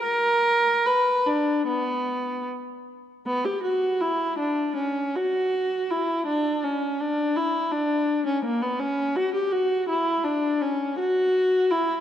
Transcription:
X:1
M:4/4
L:1/16
Q:1/4=81
K:Bm
V:1 name="Viola"
^A4 B2 D2 B,4 z4 | B, G F2 E2 D2 C2 F4 E2 | D2 C2 D2 E2 D3 C ^A, B, C2 | F G F2 E2 D2 C2 F4 E2 |]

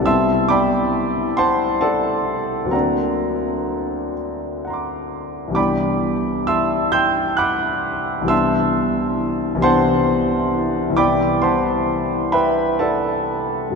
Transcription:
X:1
M:6/8
L:1/8
Q:3/8=44
K:Ador
V:1 name="Grand piano"
[eac'e'] [dgbd']2 [cfac'] [Adfa]2 | [^Adf^a]3 z [fac'd']2 | [dgbd']2 [eac'e'] [gc'e'g'] [fbd'f']2 | [eac'e']3 [cfac']3 |
[dgbd'] [cfac']2 [Begb] [Adfa]2 |]
V:2 name="Grand piano" clef=bass
[C,,G,B,CE]6 | [D,,F,^A,CD]6 | [C,,E,G,B,D]6 | [C,,E,G,B,D]3 [C,,E,G,B,D]3 |
[C,,E,G,B,E]6 |]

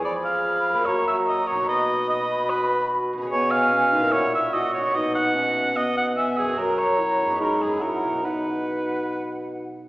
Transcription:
X:1
M:4/4
L:1/8
Q:1/4=146
K:B
V:1 name="Flute section"
_c'4 a4 | b8 | g4 f2 f2 | f2 d e f2 g2 |
a4 b2 f2 | f6- f z |]
V:2 name="Cor anglais"
=d =f3 c e ^d c | d2 d2 B2 z2 | c ^e3 c =e d c | d f3 d f e G |
A c3 A G A2 | B6 z2 |]
V:3 name="Clarinet"
G4 F4- | F8 | B,2 C D E2 F2 | D2 C2 B,2 B,2 |
F2 E2 D2 E2 | D6- D z |]
V:4 name="Harp"
[=F,,G,_C_A=d]4 [^F,,^A,F^c]4 | [B,,DFB]8 | [B,,CGc]4 [A,,EFc]4 | [B,,DFB]8 |
[F,,CFA]4 [G,,B,DB]2 [F,,CEF]2 | [B,,B,DF]8 |]
V:5 name="Bassoon" clef=bass
=F,4 ^F,4 | B,,8 | B,,4 A,,4 | B,,8 |
F,4 G,2 F,2 | B,,6- B,, z |]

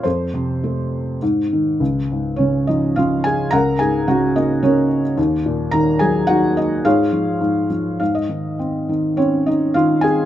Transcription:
X:1
M:3/4
L:1/16
Q:1/4=106
K:Abmix
V:1 name="Felt piano"
[=Ac]8 z4 | [K:Db] z4 [Dd]2 [Ee]2 [Ff]2 [Aa]2 | [Bgb]2 [Aa]2 [Gg]2 [Ee]2 [DBd]3 z | z4 [Bb]2 [Aa]2 [Gg]2 [Ee]2 |
[FAdf]6 z2 f e3 | z4 [Dd]2 [Ee]2 [Ff]2 [Aa]2 |]
V:2 name="Felt piano" clef=bass
F,,2 C,2 =A,4 _A,,2 E,2 | [K:Db] D,,2 A,,2 D,2 F,2 D,4 | D,,2 A,,2 D,2 B,2 D,4 | E,,2 B,,2 E,2 G,2 E,4 |
A,,2 F,2 A,,2 F,2 A,,2 E,2 | C2 E,2 C4 E,2 C2 |]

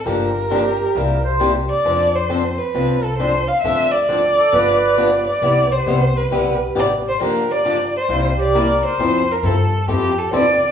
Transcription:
X:1
M:4/4
L:1/16
Q:"Swing" 1/4=134
K:C
V:1 name="Violin"
_B12 z2 d2- | d2 c4 B4 A2 c2 f2 | e2 d12 d2- | d2 c4 B4 z2 d2 c2 |
_B2 d4 c4 d4 c2- | [K:F] c2 B2 A4 G2 A2 d4 |]
V:2 name="Accordion"
z4 G2 G2 _B2 c3 z3 | z16 | z6 A2 B4- B z3 | z16 |
z8 z2 G2 _B4 | [K:F] z16 |]
V:3 name="Steel-string acoustic guitar"
[D,F,_B,DG]2 z2 [D,F,B,DG]2 z2 [C,G,B,EG]2 z2 [C,G,B,EG]2 z2 | [F,CDA]2 z2 [F,CDA]2 z2 [F,CDA]2 z2 [F,CDA]2 z2 | [D,F,CDA]2 z2 [D,F,CDA]2 z2 [D,F,B,DG]2 z2 [D,F,B,DG]2 z2 | [C,G,B,EG]2 z2 [C,G,B,EG]2 z2 [C,G,B,EG]2 z2 [C,G,B,EG]2 z2 |
[D,F,_B,DG]2 z2 [D,F,B,DG]2 z2 [C,G,B,EG]2 z2 [C,G,B,EG]2 z2 | [K:F] [F,CEA]2 z2 [F,CEA]2 z2 [F,CEA]2 z2 [F,CEA]2 z2 |]
V:4 name="Upright bass" clef=bass
G,,,8 C,,8 | F,,8 C,,8 | D,,8 G,,,8 | C,,4 C,,4 B,,,4 A,,,4 |
G,,,8 C,,8 | [K:F] F,,4 G,,4 F,,4 E,,2 z2 |]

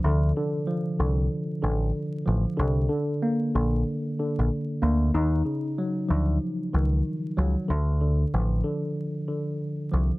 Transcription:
X:1
M:4/4
L:1/16
Q:"Swing 16ths" 1/4=94
K:Dphr
V:1 name="Tine electric piano" clef=bass
[C,D,F,]2 D,2 F,2 D,4 D,4 F,2 | D,2 D,2 B,2 D,4 D,4 B,2 | E2 _D,2 _G,2 F,4 E,4 G,2 | D,2 D,2 F,2 D,4 D,4 F,2 |]
V:2 name="Picked electric bass" clef=bass
D,,2 z4 C,,2 z2 A,,,2 z2 A,,, z | C,,2 z4 B,,,2 z3 B,,, z2 D,,2 | E,,2 z4 D,,2 z2 _D,,2 z2 D,, z | D,,4 A,,,2 z8 C,, z |]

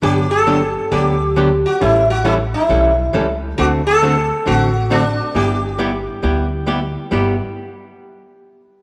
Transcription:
X:1
M:4/4
L:1/8
Q:"Swing" 1/4=136
K:G
V:1 name="Sitar"
G A3 G3 F | E F E E4 z | F A3 F2 D2 | G6 z2 |
z8 |]
V:2 name="Hollow-body jazz guitar"
[D,F,B,DG] z [D,F,B,DG] z [D,F,B,DG] z [D,F,B,DG] z | [E,G,^CEA] z [E,G,CEA] z [E,G,CEA] z [E,G,CEA] z | [D,A,CFA] z [D,A,CFA] z [D,A,CFA] z [D,A,CFA] z | [G,B,EG] z [G,B,EG] z [G,B,EG] z [G,B,EG] z |
[G,B,EG] z6 z |]
V:3 name="Upright bass" clef=bass
G,,,4 D,,4 | A,,,4 B,,,2 ^C,,2 | D,,4 A,,,4 | G,,,4 D,,4 |
G,,, z6 z |]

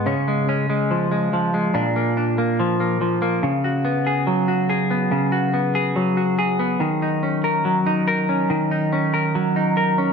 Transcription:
X:1
M:4/4
L:1/16
Q:1/4=71
K:Dbmix
V:1 name="Clean electric guitar"
[D,D] A, D A, F, A, F, A, [B,,=D] B, D B, F, B, F, B, | D, G C A G, G A C D, G C A G, G A C | E, E D B G, E B D E, E D B G, E B D |]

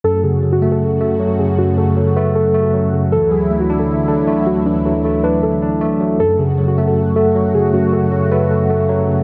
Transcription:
X:1
M:4/4
L:1/16
Q:1/4=156
K:F#m
V:1 name="Synth keys"
A2 G3 F2 A3 A4 G2 | F2 A2 A2 B2 A8 | A2 G3 F2 A3 A4 F2 | D2 A2 A2 B2 A8 |
A2 G3 F2 A3 A4 G2 | F2 A2 A2 B2 A8 |]
V:2 name="Tine electric piano" clef=bass
F,,2 C,2 F,2 A,4 A,2 F,2 C,2 | F,,2 C,2 F,2 A,4 A,2 F,2 C,2 | E,2 F,2 A,2 D4 D2 A,2 F,2 | E,2 F,2 A,2 D4 D2 A,2 F,2 |
F,,2 C,2 F,2 A,4 A,2 F,2 C,2 | F,,2 C,2 F,2 A,4 A,2 F,2 C,2 |]
V:3 name="Analog synth pad" clef=bass
[F,,C,A,F]16- | [F,,C,A,F]16 | [D,,D,F,E]16- | [D,,D,F,E]16 |
[F,,C,A,F]16- | [F,,C,A,F]16 |]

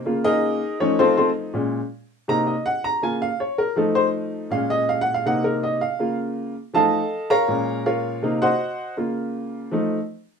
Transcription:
X:1
M:4/4
L:1/8
Q:1/4=161
K:Bbm
V:1 name="Upright piano"
z [EABe]3 [Dd] [CF=Ac] [CFAc] z | z4 b e g b | a f d B =A c z2 | f e (3f g f g B e f- |
f z3 [=Aef=a]3 [Bdfb]- | [Bdfb]2 [FBdf]3 [Gceg]3 | z8 |]
V:2 name="Upright piano"
[D,B,F]3 z [F,=A,E]4 | [B,,A,D] z3 [C,B,E] z3 | [D,B,F] z3 [F,=A,E]4 | [B,,A,D]4 [C,B,E]3 z |
[D,B,F]3 z [F,=A,E] z3 | [B,,A,D]4 [C,B,E] z3 | [D,B,F]4 [F,=A,E] z3 |]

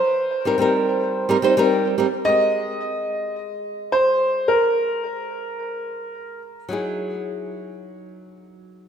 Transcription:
X:1
M:4/4
L:1/16
Q:1/4=108
K:Ab
V:1 name="Grand piano"
c12 z4 | e8 z4 c4 | B12- B2 z2 | z16 |]
V:2 name="Nylon-string guitar"
z3 [G,CEB] [G,CEB]4- [G,CEB] [G,CEB] [G,CEc] [G,CEB]3 [G,CEB] z | [A,CGB]16- | [A,CGB]16 | [^F,^D=E^G]16 |]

